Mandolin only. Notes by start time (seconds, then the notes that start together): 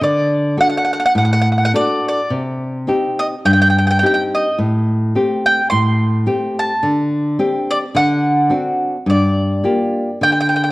0.03 D5
0.61 F#5
0.69 F#5
0.77 F#5
0.85 F#5
0.93 F#5
1.00 F#5
1.05 F#5
1.18 F#5
1.25 F#5
1.33 F#5
1.41 F#5
1.52 F#5
1.58 F#5
1.65 F#5
1.76 D5
2.09 D5
3.19 D#5
3.46 G5
3.53 G5
3.62 G5
3.70 G5
3.78 G5
3.87 G5
3.99 G5
4.06 G5
4.14 G5
4.34 D#5
5.46 G5
5.70 C6
6.59 A5
7.71 D5
7.97 F#5
9.10 D5
10.23 G5
10.32 G5
10.41 G5
10.49 G5
10.56 G5
10.64 G5